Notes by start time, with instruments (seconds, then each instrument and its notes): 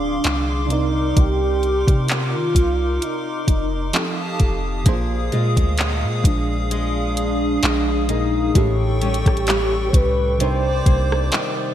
Already playing: 808-style bass D1, fm electric piano D3 C4 F4 G#4 D5, soft synth lead D4, analog synth pad G#4 F5 C6 D6
0.24 808-style bass C2, clap, closed hi-hat
0.66 fm electric piano C3, soft synth lead D4
0.70 fm electric piano C4 D#4 A#4 D5, analog synth pad D#4 A#4, soft synth lead D#4, closed hi-hat
1.17 808-style bass C2, soft synth lead G4, kick, closed hi-hat
1.63 closed hi-hat
1.88 808-style bass C3, kick, closed hi-hat
2.04 soft synth lead E4
2.08 soft synth lead F4, clap, closed hi-hat
2.35 808-style bass D#3
2.55 808-style bass C2, kick, closed hi-hat
3.02 soft synth lead D#4, closed hi-hat
3.48 808-style bass F1, kick, closed hi-hat
3.93 fm electric piano F3 C4 D#4 G4 A4, analog synth pad G4 F5 A5 D#6, clap, closed hi-hat
4.40 808-style bass F1, kick, closed hi-hat
4.84 808-style bass A#1, fm electric piano A#2 A#3 D4 G#4, nylon-string guitar A#2, analog synth pad G#4, kick, closed hi-hat
4.89 fm electric piano C5
4.93 fm electric piano F4
5.32 808-style bass A#2, nylon-string guitar G#3 F4, closed hi-hat
5.57 808-style bass D2, kick, closed hi-hat
5.78 nylon-string guitar G#3, clap, closed hi-hat
6.04 808-style bass A#2
6.24 808-style bass A#1, soft synth lead D4, kick, closed hi-hat
6.71 nylon-string guitar G#3, closed hi-hat
7.17 closed hi-hat
7.63 808-style bass A#1, nylon-string guitar G#3, clap, closed hi-hat
8.09 fm electric piano A#2 A#3 D#4 G#4 A#4, nylon-string guitar D#4, soft synth lead D#4, closed hi-hat
8.53 808-style bass A1, fm electric piano A2 A3 C#4 G4, nylon-string guitar A2, soft synth lead G4, analog synth pad A4 G5 C#6, kick, closed hi-hat
8.58 fm electric piano A4
9.01 nylon-string guitar G3 C#4, closed hi-hat
9.14 closed hi-hat
9.26 808-style bass A1, kick, cross-stick, closed hi-hat
9.37 closed hi-hat
9.47 nylon-string guitar G3, clap, closed hi-hat
9.88 soft synth lead C#5
9.93 808-style bass C2, soft synth lead B4, kick, closed hi-hat
10.39 fm electric piano C3 G3 D4 D#4, nylon-string guitar C3, analog synth pad C5 D5 D6, soft synth lead C5, closed hi-hat
10.43 fm electric piano A#4
10.86 808-style bass C2, nylon-string guitar A#3, kick, closed hi-hat
11.12 cross-stick
11.32 nylon-string guitar D#3, clap, closed hi-hat